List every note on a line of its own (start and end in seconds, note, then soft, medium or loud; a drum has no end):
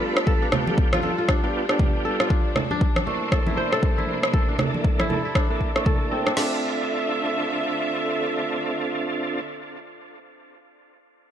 0.00 4.30 G3 medium
0.00 1.00 A3 medium
0.00 0.50 B3 medium
0.00 0.32 D4 medium
0.00 0.50 D4 medium
0.00 6.33 D4 medium
0.00 0.50 F4 medium
0.00 0.93 F4 medium
0.00 0.27 A4 medium
0.00 2.26 A4 medium
0.00 0.50 B4 medium
0.00 0.74 B4 loud
0.17 cross-stick medium
0.27 1.03 A4 medium
0.27 kick loud
0.42 1.28 D4 medium
0.52 1.01 B3 medium
0.52 1.01 D4 medium
0.52 1.01 F4 medium
0.52 1.01 G4 medium
0.52 cross-stick medium
0.52 low conga medium
0.67 high conga medium
0.78 kick loud
0.93 1.18 F4 medium
0.93 cross-stick medium
0.93 high conga medium
1.03 1.12 B3 medium
1.03 1.12 D4 medium
1.03 1.12 F4 medium
1.03 1.12 G4 medium
1.03 2.05 A4 medium
1.03 high conga medium
1.18 2.20 F4 medium
1.28 1.43 D4 medium
1.28 kick loud
1.28 cross-stick medium
1.44 1.66 B3 medium
1.44 1.69 D4 medium
1.44 1.66 D4 medium
1.44 1.66 F4 medium
1.44 1.66 G4 medium
1.69 2.29 B3 medium
1.69 2.30 D4 medium
1.69 2.29 D4 medium
1.69 2.29 F4 medium
1.69 2.29 G4 medium
1.69 cross-stick medium
1.79 kick loud
1.79 low conga medium
2.05 3.32 A4 medium
2.20 3.53 F4 medium
2.20 cross-stick medium
2.30 6.33 C3 medium
2.30 2.70 D4 medium
2.30 kick loud
2.56 2.65 A#3 medium
2.56 2.64 D4 medium
2.56 2.64 E4 medium
2.56 2.65 A4 medium
2.56 cross-stick medium
2.56 low conga medium
2.71 4.39 D4 medium
2.71 high conga medium
2.81 kick loud
2.96 cross-stick medium
2.96 high conga medium
3.07 5.06 A3 medium
3.07 4.57 A#3 medium
3.07 4.57 D4 medium
3.07 4.57 E4 medium
3.07 4.57 C5 medium
3.07 high conga medium
3.32 3.72 A4 medium
3.32 kick loud
3.32 cross-stick medium
3.47 3.97 E4 medium
3.47 high conga medium
3.57 4.76 C5 loud
3.72 4.33 A4 medium
3.72 cross-stick medium
3.83 kick loud
3.98 4.99 E4 medium
3.98 high conga medium
4.23 cross-stick medium
4.34 5.09 A4 medium
4.34 6.35 A4 medium
4.34 kick loud
4.34 high conga medium
4.49 5.35 D4 medium
4.59 5.07 A#3 medium
4.59 5.07 D4 medium
4.59 5.07 E4 medium
4.59 5.07 A4 medium
4.59 cross-stick medium
4.59 low conga loud
4.74 high conga medium
4.84 kick loud
5.00 5.25 E4 medium
5.00 cross-stick medium
5.00 high conga medium
5.10 5.19 A#3 medium
5.10 5.19 D4 medium
5.10 5.19 E4 medium
5.10 5.86 A4 medium
5.10 5.19 A4 medium
5.10 high conga medium
5.10 low conga medium
5.25 6.82 E4 medium
5.35 5.50 D4 medium
5.35 kick loud
5.35 cross-stick medium
5.50 5.72 A#3 medium
5.50 6.26 D4 medium
5.50 5.72 D4 medium
5.50 5.72 E4 medium
5.50 5.72 A4 medium
5.61 kick medium
5.76 7.75 A3 medium
5.76 6.36 A#3 medium
5.76 6.36 D4 medium
5.76 6.36 E4 medium
5.76 6.36 A4 medium
5.76 cross-stick medium
5.86 7.18 A4 medium
5.86 kick loud
5.86 low conga medium
6.11 7.91 C4 medium
6.26 6.36 D4 medium
6.26 cross-stick medium
6.37 9.41 D3 medium
6.37 9.41 A3 medium
6.37 9.41 C4 medium
6.37 8.05 D4 medium
6.37 9.41 D4 medium
6.37 9.41 F4 medium
6.37 9.41 A4 medium
6.37 9.41 E5 medium
6.37 snare loud
6.37 crash medium